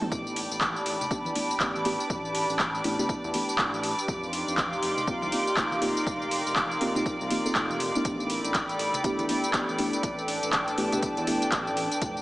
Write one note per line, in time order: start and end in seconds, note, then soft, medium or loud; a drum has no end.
0.00 1.08 A3 medium
0.00 0.12 A#3 medium
0.00 1.08 B3 medium
0.00 1.08 D4 medium
0.00 0.12 D#4 medium
0.00 1.08 E4 medium
0.00 1.09 G4 medium
0.00 0.13 A4 medium
0.00 8.05 G5 medium
0.00 0.13 A5 medium
0.00 mid tom medium
0.12 0.47 A1 medium
0.12 4.08 D4 medium
0.12 8.01 G4 medium
0.12 12.22 D5 medium
0.12 4.04 D5 medium
0.12 4.04 A5 medium
0.12 4.04 B5 medium
0.12 12.22 D6 medium
0.12 kick loud
0.12 tambourine medium
0.27 tambourine soft
0.36 open hi-hat loud
0.51 0.83 A1 medium
0.51 tambourine medium
0.61 kick loud
0.61 clap loud
0.61 tambourine medium
0.61 high conga medium
0.67 4.08 B4 medium
0.76 tambourine soft
0.86 0.98 A1 medium
0.86 open hi-hat medium
1.01 tambourine medium
1.01 low conga medium
1.11 1.33 A3 medium
1.11 1.33 B3 medium
1.11 1.33 D4 medium
1.11 1.33 E4 medium
1.11 1.33 G4 loud
1.11 kick loud
1.11 tambourine medium
1.25 1.34 E2 loud
1.25 tambourine soft
1.25 high conga medium
1.35 1.52 A3 medium
1.35 1.52 B3 medium
1.35 1.52 D4 medium
1.35 1.52 E4 medium
1.35 1.52 G4 medium
1.35 open hi-hat loud
1.51 tambourine medium
1.60 1.96 A1 loud
1.60 1.83 A3 medium
1.60 1.83 B3 medium
1.60 1.83 D4 medium
1.60 1.83 E4 medium
1.60 1.83 G4 medium
1.60 kick loud
1.60 clap loud
1.60 tambourine medium
1.76 tambourine soft
1.76 high conga medium
1.85 2.02 A3 loud
1.85 2.02 B3 medium
1.85 2.02 D4 medium
1.85 2.02 E4 medium
1.85 2.02 G4 loud
1.85 open hi-hat medium
2.00 tambourine medium
2.10 2.46 A1 loud
2.10 kick loud
2.10 tambourine medium
2.25 tambourine soft
2.35 open hi-hat loud
2.49 2.82 A1 medium
2.49 tambourine medium
2.59 kick loud
2.59 clap loud
2.59 tambourine soft
2.59 high conga medium
2.75 tambourine soft
2.84 2.97 A1 medium
2.84 2.97 A3 medium
2.84 2.97 B3 medium
2.84 2.97 D4 medium
2.84 2.97 E4 medium
2.84 2.97 G4 loud
2.84 open hi-hat medium
2.99 3.31 A3 loud
2.99 3.31 B3 medium
2.99 3.31 D4 medium
2.99 3.32 E4 medium
2.99 3.32 G4 loud
2.99 tambourine medium
2.99 low conga medium
3.09 kick loud
3.09 tambourine soft
3.24 3.32 E2 loud
3.24 tambourine soft
3.34 3.50 A3 medium
3.34 3.50 B3 medium
3.34 3.51 D4 medium
3.34 3.51 E4 medium
3.34 3.51 G4 loud
3.34 open hi-hat loud
3.34 high conga medium
3.49 tambourine medium
3.58 3.94 A1 loud
3.58 kick loud
3.58 clap loud
3.58 tambourine soft
3.74 tambourine soft
3.74 high conga medium
3.83 open hi-hat medium
3.99 tambourine medium
4.08 4.44 F1 loud
4.08 8.01 D#4 medium
4.08 8.05 D#4 medium
4.08 8.01 F5 medium
4.08 8.01 C6 medium
4.08 kick loud
4.08 tambourine soft
4.23 tambourine soft
4.33 open hi-hat loud
4.48 4.80 F1 medium
4.48 tambourine medium
4.58 kick loud
4.58 clap loud
4.58 tambourine soft
4.58 high conga medium
4.66 8.05 A#4 medium
4.73 tambourine soft
4.83 4.95 F1 medium
4.83 open hi-hat loud
4.97 tambourine medium
4.97 low conga medium
5.07 5.30 A#3 medium
5.07 5.30 C4 medium
5.07 5.30 D#4 medium
5.07 5.30 F4 medium
5.07 5.30 G4 loud
5.07 kick loud
5.07 tambourine soft
5.22 5.31 C2 loud
5.22 tambourine soft
5.22 high conga medium
5.32 5.49 A#3 medium
5.32 5.49 C4 medium
5.32 5.49 D#4 medium
5.32 5.49 F4 medium
5.32 5.49 G4 medium
5.32 open hi-hat loud
5.47 tambourine medium
5.57 5.93 F1 loud
5.57 5.79 A#3 medium
5.57 5.79 C4 medium
5.57 5.79 D#4 medium
5.57 5.79 F4 medium
5.57 5.79 G4 medium
5.57 kick loud
5.57 clap loud
5.57 tambourine medium
5.72 tambourine soft
5.72 high conga medium
5.82 5.98 A#3 loud
5.82 5.98 C4 medium
5.82 5.98 D#4 medium
5.82 5.98 F4 medium
5.82 5.99 G4 loud
5.82 open hi-hat medium
5.97 tambourine medium
6.07 6.42 F1 loud
6.07 kick loud
6.07 tambourine medium
6.22 tambourine soft
6.31 open hi-hat loud
6.46 6.78 F1 medium
6.46 tambourine medium
6.56 kick loud
6.56 clap loud
6.56 tambourine medium
6.56 high conga medium
6.71 tambourine soft
6.81 6.93 F1 medium
6.81 6.93 A#3 medium
6.81 6.93 C4 medium
6.81 6.94 D#4 medium
6.81 6.94 F4 medium
6.81 6.94 G4 loud
6.81 open hi-hat medium
6.95 7.28 A#3 medium
6.95 7.28 C4 medium
6.95 7.28 D#4 medium
6.95 7.28 F4 medium
6.95 7.28 G4 loud
6.95 tambourine medium
6.95 low conga medium
7.06 kick loud
7.06 tambourine soft
7.21 7.29 C2 loud
7.21 tambourine soft
7.30 7.42 A#3 medium
7.30 7.42 C4 medium
7.30 7.42 D#4 medium
7.30 7.42 F4 medium
7.30 7.42 G4 loud
7.30 open hi-hat loud
7.30 high conga medium
7.45 7.91 A#3 medium
7.45 7.91 C4 medium
7.45 7.91 D#4 medium
7.45 7.91 F4 medium
7.45 7.91 A4 loud
7.45 tambourine medium
7.55 7.91 F1 medium
7.55 kick loud
7.55 clap loud
7.55 tambourine medium
7.71 tambourine soft
7.71 high conga medium
7.80 open hi-hat medium
7.95 9.02 A3 medium
7.95 9.02 B3 medium
7.95 9.02 D4 medium
7.95 9.02 E4 medium
7.95 9.02 G4 medium
7.95 tambourine medium
8.05 8.41 A1 loud
8.05 12.02 D4 medium
8.05 11.98 A4 medium
8.05 11.98 D5 medium
8.05 12.22 G5 medium
8.05 10.01 B5 medium
8.05 kick loud
8.05 closed hi-hat medium
8.05 tambourine medium
8.20 12.02 B4 medium
8.20 tambourine soft
8.30 open hi-hat loud
8.44 8.77 A1 medium
8.44 closed hi-hat soft
8.44 tambourine medium
8.54 kick loud
8.54 clap loud
8.54 closed hi-hat medium
8.54 tambourine medium
8.54 high conga medium
8.69 closed hi-hat soft
8.69 tambourine soft
8.79 8.92 A1 medium
8.79 open hi-hat medium
8.92 12.22 G5 medium
8.92 closed hi-hat medium
8.92 tambourine medium
8.92 low conga medium
9.04 9.26 A3 medium
9.04 9.26 B3 medium
9.04 9.27 D4 medium
9.04 9.27 E4 medium
9.04 9.27 G4 loud
9.04 kick loud
9.04 closed hi-hat medium
9.04 tambourine medium
9.19 9.27 E2 loud
9.19 closed hi-hat soft
9.19 tambourine soft
9.19 high conga medium
9.29 9.45 A3 medium
9.29 9.46 B3 medium
9.29 9.46 D4 medium
9.29 9.46 E4 medium
9.29 9.46 G4 medium
9.29 open hi-hat loud
9.44 closed hi-hat soft
9.44 tambourine medium
9.54 9.89 A1 loud
9.54 9.76 A3 medium
9.54 9.76 B3 medium
9.54 9.76 D4 medium
9.54 9.76 E4 medium
9.54 9.76 G4 medium
9.54 kick loud
9.54 clap loud
9.54 closed hi-hat medium
9.54 tambourine medium
9.69 tambourine soft
9.69 high conga medium
9.78 9.95 A3 medium
9.78 9.95 B3 medium
9.78 9.95 D4 medium
9.78 9.95 E4 medium
9.78 9.95 G4 loud
9.78 open hi-hat medium
9.93 closed hi-hat soft
9.93 tambourine medium
10.03 10.39 A1 loud
10.03 12.00 A5 medium
10.03 kick loud
10.03 closed hi-hat medium
10.03 tambourine medium
10.18 tambourine soft
10.28 open hi-hat medium
10.43 10.75 A1 medium
10.43 closed hi-hat soft
10.43 tambourine medium
10.53 kick loud
10.53 clap loud
10.53 closed hi-hat medium
10.53 tambourine medium
10.53 high conga medium
10.68 closed hi-hat soft
10.68 tambourine soft
10.78 10.90 A1 medium
10.78 10.90 A3 medium
10.78 10.90 B3 medium
10.78 10.90 D4 medium
10.78 10.90 E4 medium
10.78 10.90 G4 loud
10.78 open hi-hat medium
10.92 11.25 A3 loud
10.92 11.25 B3 medium
10.92 11.25 D4 medium
10.92 11.25 E4 medium
10.92 11.25 G4 loud
10.92 closed hi-hat medium
10.92 tambourine medium
10.92 low conga medium
11.02 kick loud
11.02 closed hi-hat medium
11.02 tambourine medium
11.17 11.26 E2 loud
11.17 closed hi-hat soft
11.17 tambourine soft
11.27 11.44 A3 medium
11.27 11.44 B3 medium
11.27 11.44 D4 medium
11.27 11.44 E4 medium
11.27 11.44 G4 loud
11.27 open hi-hat loud
11.27 high conga medium
11.42 closed hi-hat soft
11.42 tambourine medium
11.52 11.88 A1 loud
11.52 kick loud
11.52 clap loud
11.52 closed hi-hat medium
11.52 tambourine medium
11.67 tambourine soft
11.67 high conga medium
11.77 open hi-hat medium
11.92 closed hi-hat soft
11.92 tambourine medium
12.02 12.22 F1 loud
12.02 12.22 D#4 medium
12.02 12.22 F4 medium
12.02 12.22 A#5 medium
12.02 kick loud
12.02 closed hi-hat medium
12.02 tambourine medium
12.17 tambourine soft